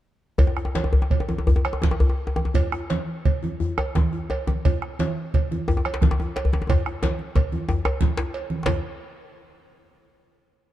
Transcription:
0.38 bombo low medium
0.38 cowbell medium
0.38 djembe bass loud
0.38 djembe bass medium
0.38 low conga medium
0.47 djembe tone medium
0.57 bombo rim medium
0.57 djembe tone medium
0.65 djembe tone medium
0.75 cowbell soft
0.75 djembe slap medium
0.75 djembe tone medium
0.75 high conga medium
0.84 djembe tone medium
0.93 djembe slap soft
0.93 djembe bass medium
1.02 djembe tone medium
1.10 bombo low medium
1.10 cowbell soft
1.10 low conga medium
1.20 djembe tone medium
1.29 djembe tone soft
1.29 djembe tone medium
1.29 high conga medium
1.38 djembe tone medium
1.47 djembe bass loud
1.47 djembe bass medium
1.56 djembe tone medium
1.65 bombo rim medium
1.65 cowbell soft
1.65 high conga soft
1.73 djembe tone medium
1.82 bombo rim soft
1.82 bombo low medium
1.82 djembe slap medium
1.82 djembe tone medium
1.82 high conga medium
1.82 low conga medium
1.91 djembe tone medium
2.00 djembe tone soft
2.00 djembe bass medium
2.09 djembe tone medium
2.27 djembe tone medium
2.36 djembe tone medium
2.36 high conga soft
2.45 djembe tone medium
2.54 bombo low medium
2.54 cowbell medium
2.54 djembe bass medium
2.54 low conga medium
2.72 bombo rim medium
2.72 djembe tone medium
2.90 cowbell soft
2.90 djembe slap medium
2.90 high conga medium
3.08 djembe slap soft
3.25 bombo low medium
3.25 cowbell soft
3.25 low conga medium
3.43 djembe tone medium
3.43 high conga medium
3.60 djembe bass medium
3.78 bombo rim medium
3.78 cowbell soft
3.78 djembe tone medium
3.78 high conga soft
3.95 bombo rim soft
3.95 bombo low medium
3.95 djembe slap medium
3.95 djembe tone medium
3.95 high conga medium
4.13 djembe tone soft
4.30 cowbell soft
4.30 djembe tone medium
4.47 djembe tone medium
4.47 high conga medium
4.65 bombo low medium
4.65 cowbell medium
4.65 low conga medium
4.65 djembe bass medium
4.82 bombo rim medium
4.99 cowbell soft
4.99 djembe slap medium
4.99 high conga medium
5.17 djembe slap soft
5.34 bombo low medium
5.34 cowbell soft
5.34 low conga medium
5.51 djembe tone soft
5.51 high conga medium
5.68 djembe tone medium
5.68 djembe bass medium
5.77 djembe tone medium
5.85 bombo rim medium
5.85 cowbell soft
5.85 djembe slap soft
5.85 high conga soft
5.94 djembe slap medium
6.01 bombo rim soft
6.01 bombo low medium
6.01 djembe slap medium
6.01 high conga medium
6.01 low conga medium
6.01 djembe bass medium
6.11 djembe tone loud
6.20 djembe tone medium
6.36 cowbell soft
6.36 djembe slap medium
6.45 djembe bass medium
6.53 high conga soft
6.53 djembe tone medium
6.62 djembe tone medium
6.69 bombo low medium
6.69 cowbell medium
6.69 djembe slap soft
6.69 high conga soft
6.69 djembe tone medium
6.69 low conga medium
6.69 djembe bass medium
6.86 bombo rim medium
6.86 djembe tone soft
7.03 cowbell soft
7.03 djembe slap medium
7.03 djembe tone medium
7.03 high conga medium
7.19 high conga soft
7.35 bombo low medium
7.35 cowbell soft
7.35 high conga soft
7.35 djembe tone medium
7.35 low conga medium
7.52 high conga medium
7.52 djembe tone medium
7.69 bombo rim soft
7.69 djembe slap soft
7.69 djembe tone medium
7.69 djembe bass medium
7.85 bombo rim medium
7.85 cowbell soft
7.85 djembe tone loud
8.01 bombo low medium
8.01 djembe slap medium
8.01 high conga medium
8.01 low conga medium
8.17 bombo rim soft
8.17 djembe slap loud
8.17 djembe tone soft
8.34 cowbell soft
8.34 djembe slap soft
8.50 djembe slap soft
8.50 high conga medium
8.66 bombo low medium
8.66 cowbell medium
8.66 djembe slap loud
8.66 low conga medium
8.66 djembe bass medium

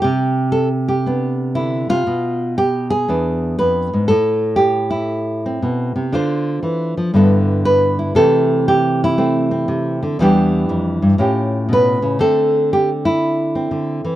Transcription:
0.02 1.88 C3 medium
0.02 0.52 G4 medium
0.52 0.68 A4 medium
0.88 1.55 G4 medium
1.06 3.09 B3 soft
1.06 2.06 D4 soft
1.55 1.90 D3 soft
1.55 1.89 E4 medium
1.89 2.06 C3 medium
1.89 2.57 F4 loud
2.07 3.06 B2 medium
2.58 2.90 G4 medium
2.90 3.58 G#4 medium
3.08 3.59 E2 medium
3.08 4.08 B3 soft
3.08 4.08 D4 soft
3.59 3.93 F2 soft
3.59 4.08 B4 medium
3.93 4.10 G#2 medium
4.08 5.61 A2 medium
4.08 4.90 A4 medium
4.56 5.43 G4 medium
4.90 6.10 E4 medium
5.46 6.11 C4 soft
5.62 5.95 B2 medium
5.96 6.12 C3 medium
6.13 6.62 D3 medium
6.13 7.12 D4 medium
6.13 7.12 F4 medium
6.13 7.13 C5 medium
6.63 6.96 E3 medium
6.97 7.14 F3 medium
7.14 8.13 G2 medium
7.14 8.15 D3 soft
7.14 8.13 B3 soft
7.14 7.98 E4 soft
7.14 7.65 A4 soft
7.65 8.15 B4 loud
7.99 8.17 E4 soft
8.15 9.67 C3 medium
8.15 10.02 E3 medium
8.15 9.17 A3 soft
8.15 9.17 C4 soft
8.15 8.66 A4 loud
8.68 9.00 G4 medium
9.04 10.19 E4 medium
9.18 10.16 A3 soft
9.18 9.50 C4 medium
9.51 10.16 C4 soft
9.68 10.01 C3 medium
10.03 10.18 D3 medium
10.19 10.69 E2 medium
10.19 11.23 E3 medium
10.19 11.19 G3 medium
10.19 11.18 D4 medium
10.19 11.19 G4 medium
10.69 11.02 F2 medium
11.02 11.18 G2 medium
11.18 12.17 A2 medium
11.18 12.18 C#4 soft
11.18 12.20 F4 soft
11.18 11.70 G4 soft
11.69 12.02 B2 medium
11.73 12.20 B4 loud
12.02 12.19 C#3 medium
12.19 13.70 D3 medium
12.19 14.16 A3 soft
12.19 13.54 C4 medium
12.19 12.70 A4 medium
12.73 12.89 G4 medium
13.05 14.16 E4 medium
13.55 14.16 C4 soft
13.71 14.04 D3 soft
14.05 14.16 E3 medium

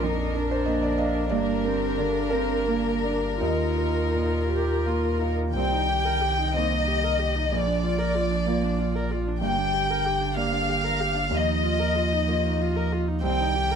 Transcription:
0.00 1.27 A#1 medium
0.00 1.34 A#1 medium
0.00 0.55 F2 soft
0.00 3.37 D4 medium
0.00 0.37 D#4 medium
0.00 0.34 A#4 medium
0.00 1.28 A#4 soft
0.34 1.31 D4 medium
0.34 0.86 A#4 soft
0.51 0.66 C5 medium
0.66 1.18 A#3 soft
0.66 0.81 D#5 medium
0.83 0.98 D5 medium
0.98 1.29 D#5 medium
0.98 1.31 F5 medium
1.29 3.43 G1 medium
1.29 3.37 G2 medium
1.29 1.67 A#3 medium
1.29 5.30 A#4 medium
1.29 2.27 D5 medium
1.64 2.00 C4 medium
1.64 2.18 A#4 soft
1.97 2.53 D3 soft
1.97 2.34 D4 medium
2.30 2.69 C4 medium
2.30 3.37 A#4 medium
2.67 3.06 A#3 medium
2.67 3.27 A#3 soft
3.04 3.41 D4 medium
3.04 3.41 D5 soft
3.41 5.51 D#2 soft
3.41 5.54 D#2 medium
3.41 4.40 D#4 medium
3.41 5.31 F4 medium
3.41 4.46 D#5 medium
3.78 4.35 A#4 soft
4.14 4.71 A#2 soft
4.48 4.87 G4 medium
4.48 5.06 A#4 soft
4.86 5.42 A#3 soft
4.86 5.22 F4 soft
5.21 5.55 D#4 soft
5.21 5.55 F5 soft
5.55 7.54 C2 medium
5.55 6.53 C2 soft
5.55 7.55 D#3 soft
5.55 5.74 C4 medium
5.55 6.51 G5 medium
5.72 5.91 D#4 soft
5.89 6.07 G4 soft
6.05 6.23 A#4 soft
6.22 6.40 G4 soft
6.38 6.56 D#4 soft
6.55 7.49 A#3 soft
6.55 6.72 C4 soft
6.55 7.49 D#4 soft
6.55 7.52 D#5 medium
6.55 7.49 D#5 soft
6.71 6.89 D#4 soft
6.87 7.05 G4 soft
7.04 7.21 A#4 soft
7.19 7.37 G4 soft
7.36 7.50 D#4 soft
7.50 9.44 A#1 medium
7.50 8.45 A#1 medium
7.50 9.44 F3 soft
7.50 7.68 A#3 soft
7.50 9.11 D5 medium
7.67 7.84 D4 soft
7.83 8.00 F4 soft
7.99 8.17 A#4 soft
8.15 8.32 F4 soft
8.31 8.49 D4 soft
8.47 8.65 A#3 soft
8.47 9.39 A#3 soft
8.47 9.39 F4 soft
8.47 9.39 D5 soft
8.64 8.81 D4 soft
8.79 8.97 F4 soft
8.95 9.13 A#4 soft
9.11 9.29 F4 soft
9.27 9.43 D4 soft
9.41 11.33 G1 medium
9.41 10.33 G2 soft
9.41 11.33 D3 medium
9.41 9.60 A#3 soft
9.41 10.32 G5 medium
9.58 9.76 D4 soft
9.74 9.92 G4 soft
9.91 10.08 A#4 soft
10.06 10.22 G4 soft
10.21 10.38 D4 soft
10.36 11.27 A#3 soft
10.36 10.54 A#3 soft
10.36 11.27 G4 soft
10.36 11.28 D5 soft
10.36 11.29 F5 medium
10.53 10.70 D4 soft
10.69 10.86 G4 soft
10.84 11.02 A#4 soft
11.01 11.17 G4 soft
11.15 11.30 D4 soft
11.30 12.25 D#2 medium
11.30 13.24 D#2 medium
11.30 13.23 F3 medium
11.30 11.49 A#3 medium
11.30 12.92 D#5 medium
11.47 11.65 D#4 soft
11.63 11.81 F4 medium
11.80 11.97 A#4 medium
11.96 12.14 F4 soft
12.12 12.30 D#4 soft
12.28 13.19 A#3 soft
12.28 12.47 A#3 medium
12.28 13.19 F4 soft
12.28 13.20 D#5 soft
12.45 12.63 D#4 soft
12.61 12.78 F4 soft
12.76 12.94 A#4 soft
12.93 13.09 F4 soft
13.08 13.23 D#4 soft
13.22 13.76 C2 medium
13.22 13.76 D#3 medium
13.22 13.42 C4 medium
13.22 13.76 G5 medium
13.40 13.57 D#4 medium
13.56 13.73 G4 medium
13.71 13.76 A#4 medium

